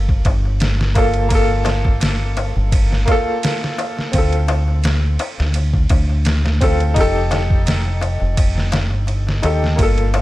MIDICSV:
0, 0, Header, 1, 5, 480
1, 0, Start_track
1, 0, Key_signature, -2, "minor"
1, 0, Tempo, 705882
1, 895, Time_signature, 4, 2, 24, 8
1, 6947, End_track
2, 0, Start_track
2, 0, Title_t, "Upright piano"
2, 0, Program_c, 0, 0
2, 0, Control_c, 0, 64, 127
2, 0, Note_on_c, 0, 58, 74
2, 0, Note_on_c, 0, 65, 64
2, 0, Note_on_c, 0, 69, 78
2, 619, Note_off_c, 0, 58, 0
2, 630, Note_off_c, 0, 65, 0
2, 640, Note_off_c, 0, 69, 0
2, 643, Note_on_c, 0, 58, 82
2, 657, Note_on_c, 0, 65, 77
2, 666, Note_on_c, 0, 69, 91
2, 795, Note_off_c, 0, 58, 0
2, 802, Note_off_c, 0, 65, 0
2, 806, Note_off_c, 0, 69, 0
2, 876, Note_on_c, 0, 58, 94
2, 895, Note_on_c, 0, 65, 84
2, 918, Note_on_c, 0, 69, 108
2, 2058, Note_off_c, 0, 58, 0
2, 2068, Note_off_c, 0, 65, 0
2, 2077, Note_on_c, 0, 58, 88
2, 2080, Note_off_c, 0, 69, 0
2, 2096, Note_on_c, 0, 65, 83
2, 2118, Note_on_c, 0, 69, 98
2, 2779, Note_off_c, 0, 58, 0
2, 2789, Note_off_c, 0, 65, 0
2, 2799, Note_off_c, 0, 69, 0
2, 2800, Note_on_c, 0, 60, 68
2, 2821, Note_on_c, 0, 65, 64
2, 2822, Control_c, 0, 64, 0
2, 2845, Note_on_c, 0, 69, 79
2, 2940, Control_c, 0, 64, 127
2, 4460, Note_off_c, 0, 60, 0
2, 4471, Note_off_c, 0, 65, 0
2, 4483, Note_off_c, 0, 69, 0
2, 4492, Note_on_c, 0, 60, 83
2, 4500, Note_on_c, 0, 65, 74
2, 4512, Note_on_c, 0, 69, 90
2, 4639, Note_off_c, 0, 60, 0
2, 4643, Note_off_c, 0, 65, 0
2, 4649, Note_off_c, 0, 69, 0
2, 4720, Note_on_c, 0, 63, 93
2, 4743, Control_c, 0, 64, 0
2, 4744, Note_on_c, 0, 67, 89
2, 4764, Note_on_c, 0, 69, 110
2, 4850, Control_c, 0, 64, 127
2, 5901, Note_off_c, 0, 63, 0
2, 5912, Note_off_c, 0, 67, 0
2, 5922, Note_off_c, 0, 69, 0
2, 6408, Note_on_c, 0, 63, 73
2, 6417, Note_on_c, 0, 67, 69
2, 6429, Note_on_c, 0, 69, 84
2, 6625, Note_off_c, 0, 63, 0
2, 6629, Note_off_c, 0, 67, 0
2, 6635, Note_off_c, 0, 69, 0
2, 6636, Note_on_c, 0, 58, 72
2, 6660, Note_on_c, 0, 65, 67
2, 6662, Control_c, 0, 64, 0
2, 6683, Note_on_c, 0, 69, 82
2, 6802, Control_c, 0, 64, 127
2, 6947, Note_off_c, 0, 58, 0
2, 6947, Note_off_c, 0, 65, 0
2, 6947, Note_off_c, 0, 69, 0
2, 6947, End_track
3, 0, Start_track
3, 0, Title_t, "Fingered electric bass"
3, 0, Program_c, 1, 33
3, 0, Note_on_c, 1, 31, 80
3, 154, Note_off_c, 1, 31, 0
3, 173, Note_on_c, 1, 31, 86
3, 1717, Note_off_c, 1, 31, 0
3, 1743, Note_on_c, 1, 31, 74
3, 2073, Note_off_c, 1, 31, 0
3, 2814, Note_on_c, 1, 38, 83
3, 3513, Note_off_c, 1, 38, 0
3, 3670, Note_on_c, 1, 38, 83
3, 3997, Note_off_c, 1, 38, 0
3, 4013, Note_on_c, 1, 38, 93
3, 4736, Note_on_c, 1, 29, 84
3, 4747, Note_off_c, 1, 38, 0
3, 5559, Note_off_c, 1, 29, 0
3, 5585, Note_on_c, 1, 29, 75
3, 6062, Note_off_c, 1, 29, 0
3, 6062, Note_on_c, 1, 31, 85
3, 6393, Note_off_c, 1, 31, 0
3, 6419, Note_on_c, 1, 39, 79
3, 6630, Note_off_c, 1, 39, 0
3, 6655, Note_on_c, 1, 31, 78
3, 6947, Note_off_c, 1, 31, 0
3, 6947, End_track
4, 0, Start_track
4, 0, Title_t, "Darbuka"
4, 65, Note_on_c, 9, 63, 32
4, 133, Note_off_c, 9, 63, 0
4, 176, Note_on_c, 9, 63, 82
4, 244, Note_off_c, 9, 63, 0
4, 308, Note_on_c, 9, 63, 37
4, 376, Note_off_c, 9, 63, 0
4, 415, Note_on_c, 9, 63, 47
4, 483, Note_off_c, 9, 63, 0
4, 538, Note_on_c, 9, 63, 35
4, 606, Note_off_c, 9, 63, 0
4, 652, Note_on_c, 9, 63, 86
4, 720, Note_off_c, 9, 63, 0
4, 777, Note_on_c, 9, 63, 38
4, 845, Note_off_c, 9, 63, 0
4, 893, Note_on_c, 9, 63, 40
4, 961, Note_off_c, 9, 63, 0
4, 1019, Note_on_c, 9, 63, 32
4, 1087, Note_off_c, 9, 63, 0
4, 1121, Note_on_c, 9, 63, 92
4, 1189, Note_off_c, 9, 63, 0
4, 1256, Note_on_c, 9, 63, 39
4, 1324, Note_off_c, 9, 63, 0
4, 1364, Note_on_c, 9, 63, 49
4, 1432, Note_off_c, 9, 63, 0
4, 1613, Note_on_c, 9, 63, 82
4, 1681, Note_off_c, 9, 63, 0
4, 1740, Note_on_c, 9, 63, 33
4, 1808, Note_off_c, 9, 63, 0
4, 1852, Note_on_c, 9, 63, 49
4, 1920, Note_off_c, 9, 63, 0
4, 1979, Note_on_c, 9, 63, 33
4, 2047, Note_off_c, 9, 63, 0
4, 2093, Note_on_c, 9, 63, 83
4, 2161, Note_off_c, 9, 63, 0
4, 2217, Note_on_c, 9, 63, 32
4, 2285, Note_off_c, 9, 63, 0
4, 2338, Note_on_c, 9, 63, 40
4, 2406, Note_off_c, 9, 63, 0
4, 2455, Note_on_c, 9, 63, 34
4, 2523, Note_off_c, 9, 63, 0
4, 2573, Note_on_c, 9, 63, 80
4, 2641, Note_off_c, 9, 63, 0
4, 2700, Note_on_c, 9, 63, 35
4, 2768, Note_off_c, 9, 63, 0
4, 2815, Note_on_c, 9, 63, 41
4, 2883, Note_off_c, 9, 63, 0
4, 2946, Note_on_c, 9, 63, 30
4, 3014, Note_off_c, 9, 63, 0
4, 3050, Note_on_c, 9, 63, 97
4, 3118, Note_off_c, 9, 63, 0
4, 3182, Note_on_c, 9, 63, 36
4, 3250, Note_off_c, 9, 63, 0
4, 3298, Note_on_c, 9, 63, 47
4, 3366, Note_off_c, 9, 63, 0
4, 3535, Note_on_c, 9, 63, 86
4, 3603, Note_off_c, 9, 63, 0
4, 3665, Note_on_c, 9, 63, 36
4, 3733, Note_off_c, 9, 63, 0
4, 3779, Note_on_c, 9, 63, 43
4, 3847, Note_off_c, 9, 63, 0
4, 3906, Note_on_c, 9, 63, 32
4, 3974, Note_off_c, 9, 63, 0
4, 4014, Note_on_c, 9, 63, 76
4, 4082, Note_off_c, 9, 63, 0
4, 4145, Note_on_c, 9, 63, 37
4, 4213, Note_off_c, 9, 63, 0
4, 4253, Note_on_c, 9, 63, 44
4, 4321, Note_off_c, 9, 63, 0
4, 4382, Note_on_c, 9, 63, 35
4, 4450, Note_off_c, 9, 63, 0
4, 4502, Note_on_c, 9, 63, 71
4, 4570, Note_off_c, 9, 63, 0
4, 4622, Note_on_c, 9, 63, 34
4, 4690, Note_off_c, 9, 63, 0
4, 4732, Note_on_c, 9, 63, 46
4, 4800, Note_off_c, 9, 63, 0
4, 4864, Note_on_c, 9, 63, 34
4, 4932, Note_off_c, 9, 63, 0
4, 4971, Note_on_c, 9, 63, 85
4, 5039, Note_off_c, 9, 63, 0
4, 5101, Note_on_c, 9, 63, 31
4, 5169, Note_off_c, 9, 63, 0
4, 5210, Note_on_c, 9, 63, 50
4, 5278, Note_off_c, 9, 63, 0
4, 5340, Note_on_c, 9, 63, 37
4, 5408, Note_off_c, 9, 63, 0
4, 5450, Note_on_c, 9, 63, 77
4, 5518, Note_off_c, 9, 63, 0
4, 5577, Note_on_c, 9, 63, 34
4, 5645, Note_off_c, 9, 63, 0
4, 5694, Note_on_c, 9, 63, 53
4, 5762, Note_off_c, 9, 63, 0
4, 5819, Note_on_c, 9, 63, 32
4, 5887, Note_off_c, 9, 63, 0
4, 5932, Note_on_c, 9, 63, 83
4, 6000, Note_off_c, 9, 63, 0
4, 6056, Note_on_c, 9, 63, 39
4, 6124, Note_off_c, 9, 63, 0
4, 6169, Note_on_c, 9, 63, 47
4, 6237, Note_off_c, 9, 63, 0
4, 6303, Note_on_c, 9, 63, 34
4, 6371, Note_off_c, 9, 63, 0
4, 6415, Note_on_c, 9, 63, 79
4, 6483, Note_off_c, 9, 63, 0
4, 6543, Note_on_c, 9, 63, 35
4, 6611, Note_off_c, 9, 63, 0
4, 6652, Note_on_c, 9, 63, 52
4, 6720, Note_off_c, 9, 63, 0
4, 6782, Note_on_c, 9, 63, 30
4, 6850, Note_off_c, 9, 63, 0
4, 6894, Note_on_c, 9, 63, 92
4, 6947, Note_off_c, 9, 63, 0
4, 6947, End_track
5, 0, Start_track
5, 0, Title_t, "Drums"
5, 59, Note_on_c, 9, 36, 85
5, 127, Note_off_c, 9, 36, 0
5, 169, Note_on_c, 9, 51, 62
5, 171, Note_on_c, 9, 36, 88
5, 237, Note_off_c, 9, 51, 0
5, 239, Note_off_c, 9, 36, 0
5, 410, Note_on_c, 9, 51, 79
5, 419, Note_on_c, 9, 38, 99
5, 478, Note_off_c, 9, 51, 0
5, 487, Note_off_c, 9, 38, 0
5, 549, Note_on_c, 9, 38, 55
5, 617, Note_off_c, 9, 38, 0
5, 649, Note_on_c, 9, 51, 64
5, 650, Note_on_c, 9, 36, 90
5, 717, Note_off_c, 9, 51, 0
5, 718, Note_off_c, 9, 36, 0
5, 772, Note_on_c, 9, 51, 39
5, 840, Note_off_c, 9, 51, 0
5, 887, Note_on_c, 9, 51, 84
5, 889, Note_on_c, 9, 36, 104
5, 955, Note_off_c, 9, 51, 0
5, 957, Note_off_c, 9, 36, 0
5, 1126, Note_on_c, 9, 51, 61
5, 1136, Note_on_c, 9, 38, 41
5, 1194, Note_off_c, 9, 51, 0
5, 1204, Note_off_c, 9, 38, 0
5, 1257, Note_on_c, 9, 36, 92
5, 1325, Note_off_c, 9, 36, 0
5, 1369, Note_on_c, 9, 51, 79
5, 1378, Note_on_c, 9, 38, 103
5, 1437, Note_off_c, 9, 51, 0
5, 1446, Note_off_c, 9, 38, 0
5, 1610, Note_on_c, 9, 51, 68
5, 1678, Note_off_c, 9, 51, 0
5, 1851, Note_on_c, 9, 36, 109
5, 1853, Note_on_c, 9, 51, 89
5, 1919, Note_off_c, 9, 36, 0
5, 1921, Note_off_c, 9, 51, 0
5, 1988, Note_on_c, 9, 38, 40
5, 2056, Note_off_c, 9, 38, 0
5, 2092, Note_on_c, 9, 36, 81
5, 2092, Note_on_c, 9, 51, 59
5, 2160, Note_off_c, 9, 36, 0
5, 2160, Note_off_c, 9, 51, 0
5, 2334, Note_on_c, 9, 51, 83
5, 2343, Note_on_c, 9, 38, 101
5, 2402, Note_off_c, 9, 51, 0
5, 2411, Note_off_c, 9, 38, 0
5, 2475, Note_on_c, 9, 38, 44
5, 2543, Note_off_c, 9, 38, 0
5, 2577, Note_on_c, 9, 51, 67
5, 2645, Note_off_c, 9, 51, 0
5, 2710, Note_on_c, 9, 38, 38
5, 2778, Note_off_c, 9, 38, 0
5, 2810, Note_on_c, 9, 51, 88
5, 2813, Note_on_c, 9, 36, 98
5, 2878, Note_off_c, 9, 51, 0
5, 2881, Note_off_c, 9, 36, 0
5, 2942, Note_on_c, 9, 51, 40
5, 3010, Note_off_c, 9, 51, 0
5, 3049, Note_on_c, 9, 51, 58
5, 3117, Note_off_c, 9, 51, 0
5, 3289, Note_on_c, 9, 51, 80
5, 3298, Note_on_c, 9, 38, 103
5, 3357, Note_off_c, 9, 51, 0
5, 3366, Note_off_c, 9, 38, 0
5, 3531, Note_on_c, 9, 51, 67
5, 3599, Note_off_c, 9, 51, 0
5, 3671, Note_on_c, 9, 38, 48
5, 3739, Note_off_c, 9, 38, 0
5, 3767, Note_on_c, 9, 51, 89
5, 3835, Note_off_c, 9, 51, 0
5, 3900, Note_on_c, 9, 36, 88
5, 3968, Note_off_c, 9, 36, 0
5, 4008, Note_on_c, 9, 51, 64
5, 4013, Note_on_c, 9, 36, 84
5, 4076, Note_off_c, 9, 51, 0
5, 4081, Note_off_c, 9, 36, 0
5, 4250, Note_on_c, 9, 51, 84
5, 4260, Note_on_c, 9, 38, 101
5, 4318, Note_off_c, 9, 51, 0
5, 4328, Note_off_c, 9, 38, 0
5, 4390, Note_on_c, 9, 38, 54
5, 4458, Note_off_c, 9, 38, 0
5, 4495, Note_on_c, 9, 36, 96
5, 4497, Note_on_c, 9, 51, 68
5, 4563, Note_off_c, 9, 36, 0
5, 4565, Note_off_c, 9, 51, 0
5, 4626, Note_on_c, 9, 51, 38
5, 4694, Note_off_c, 9, 51, 0
5, 4734, Note_on_c, 9, 51, 79
5, 4735, Note_on_c, 9, 36, 101
5, 4802, Note_off_c, 9, 51, 0
5, 4803, Note_off_c, 9, 36, 0
5, 4974, Note_on_c, 9, 51, 60
5, 4984, Note_on_c, 9, 38, 45
5, 5042, Note_off_c, 9, 51, 0
5, 5052, Note_off_c, 9, 38, 0
5, 5103, Note_on_c, 9, 36, 92
5, 5171, Note_off_c, 9, 36, 0
5, 5215, Note_on_c, 9, 51, 78
5, 5224, Note_on_c, 9, 38, 98
5, 5283, Note_off_c, 9, 51, 0
5, 5292, Note_off_c, 9, 38, 0
5, 5457, Note_on_c, 9, 51, 67
5, 5525, Note_off_c, 9, 51, 0
5, 5694, Note_on_c, 9, 51, 92
5, 5695, Note_on_c, 9, 36, 101
5, 5762, Note_off_c, 9, 51, 0
5, 5763, Note_off_c, 9, 36, 0
5, 5832, Note_on_c, 9, 38, 40
5, 5900, Note_off_c, 9, 38, 0
5, 5930, Note_on_c, 9, 51, 75
5, 5940, Note_on_c, 9, 38, 92
5, 5998, Note_off_c, 9, 51, 0
5, 6008, Note_off_c, 9, 38, 0
5, 6174, Note_on_c, 9, 51, 57
5, 6242, Note_off_c, 9, 51, 0
5, 6314, Note_on_c, 9, 38, 45
5, 6382, Note_off_c, 9, 38, 0
5, 6414, Note_on_c, 9, 51, 62
5, 6482, Note_off_c, 9, 51, 0
5, 6555, Note_on_c, 9, 38, 40
5, 6623, Note_off_c, 9, 38, 0
5, 6653, Note_on_c, 9, 36, 104
5, 6656, Note_on_c, 9, 51, 85
5, 6721, Note_off_c, 9, 36, 0
5, 6724, Note_off_c, 9, 51, 0
5, 6784, Note_on_c, 9, 51, 41
5, 6852, Note_off_c, 9, 51, 0
5, 6894, Note_on_c, 9, 51, 60
5, 6947, Note_off_c, 9, 51, 0
5, 6947, End_track
0, 0, End_of_file